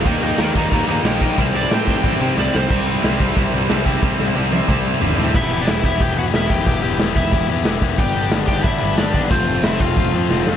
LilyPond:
<<
  \new Staff \with { instrumentName = "Overdriven electric guitar" } { \time 4/4 \key c \major \tempo 4 = 182 <bes' g''>8 <bes' g''>8 <bes' g''>8 <d'' bes''>8 <d'' bes''>8 <d'' bes''>8 g''4 | r8 d''8 g''2 d''8 c''8 | r1 | r1 |
\key e \minor <e' e''>8. <d' d''>16 <e' e''>8 <e' e''>8 <g' g''>8 <fis' fis''>8 <e' e''>8 <g' g''>8 | <g' g''>4 r8 <e' e''>4 r4. | <g' g''>4 r8 <g' g''>8 <e' e''>4 <d' d''>4 | <c' c''>4 <e' e''>8 <f' f''>2 r8 | }
  \new Staff \with { instrumentName = "Distorted electric guitar" } { \time 4/4 \key c \major <ees g bes ees'>8 <ees g bes ees'>8 <ees g bes ees'>8 <ees g bes ees'>8 <ees g bes ees'>8 <ees g bes ees'>8 <ees g bes ees'>8 <ees g bes ees'>8 | <c g c' e'>8 <c g c' e'>8 <c g c' e'>8 <c g c' e'>8 <c g c' e'>8 <c g c' e'>8 <c g c' e'>8 <c g c' e'>8 | <c g c' e'>4 <c g c' e'>8 <c g c' e'>8 <c g c' e'>4 <c g c' e'>8 <c g c' e'>8 | <c g c' e'>4 <c g c' e'>8 <c g c' e'>8 <c g c' e'>4 <c g c' e'>8 <c g c' e'>8 |
\key e \minor <e b e' g'>8 <e b e' g'>8 <e b e' g'>8 <e b e' g'>8 <e b e' g'>8 <e b e' g'>8 <e b e' g'>8 <e b e' g'>8 | <e b e' g'>8 <e b e' g'>8 <e b e' g'>8 <e b e' g'>8 <e b e' g'>8 <e b e' g'>8 <e b e' g'>8 <e b e' g'>8 | <g b d' g'>8 <g b d' g'>8 <g b d' g'>8 <g b d' g'>8 <g b d' g'>8 <g b d' g'>8 <g b d' g'>8 <g b d' g'>8 | <f a c' f'>8 <f a c' f'>8 <f a c' f'>8 <f a c' f'>8 <f a c' f'>8 <f a c' f'>8 <f a c' f'>8 <f a c' f'>8 | }
  \new Staff \with { instrumentName = "Distorted electric guitar" } { \clef bass \time 4/4 \key c \major <ees bes ees'>8 <ees bes ees'>8 <ees bes ees'>8 <ees bes ees'>8 <ees bes ees'>8 <ees bes ees'>8 <ees bes ees'>8 <ees bes ees'>8 | <c g c'>8 <c g c'>8 <c g c'>8 <c g c'>8 <c g c'>8 <c g c'>8 <c g c'>8 <c g c'>8 | <c g c'>4 <c g c'>8 <c g c'>8 <c g c'>4 <c g c'>8 <c g c'>8 | <c g c'>4 <c g c'>8 <c g c'>8 <c g c'>4 <c g c'>8 <c g c'>8 |
\key e \minor r1 | r1 | r1 | r1 | }
  \new Staff \with { instrumentName = "Picked electric bass" } { \clef bass \time 4/4 \key c \major ees,8 ees,8 ees,8 ees,8 ees,8 ees,8 bes,,4 | c,8 c,8 a,4 a,,8 c8 c,8 c,8 | c,4 c,8 c,8 c,8 c,8 c,4 | c,8 c,8 c,4 c,4 g,,8 a,8 |
\key e \minor e,,8 e,,8 e,,8 e,,8 e,,8 e,,8 e,,8 e,,8 | e,,8 e,,8 e,,8 e,,8 e,,8 e,8 e,,8 e,,8 | g,,8 g,,8 g,,8 g,,8 g,,8 g,,8 g,,8 g,,8 | f,,8 f,,8 f,,8 f,,8 f,,8 f,8 f,,8 f,,8 | }
  \new DrumStaff \with { instrumentName = "Drums" } \drummode { \time 4/4 <cymc bd>8 cymc8 <cymc sn>8 <cymc bd>8 <cymc bd>8 cymc8 <cymc sn>8 <cymc bd>8 | <cymc bd>8 cymc8 <cymc sn>8 <cymc bd>8 <cymc bd>8 cymc8 sn8 sn8 | <cymc bd>4 <cymc sn>8 bd8 <cymc bd>4 <cymc sn>8 bd8 | <bd sn>8 sn8 r8 tommh8 <bd toml>4 tomfh8 tomfh8 |
<cymc bd>4 <hho sn>8 bd8 <hho bd>4 <hho sn>8 bd8 | <hho bd>4 <hho sn>8 bd8 <hho bd>4 <hho sn>8 bd8 | <hho bd>4 <hho sn>8 bd8 <hho bd>4 <hho sn>8 bd8 | <hho bd>4 <hho sn>8 bd8 <hho bd>4 sn8 sn8 | }
>>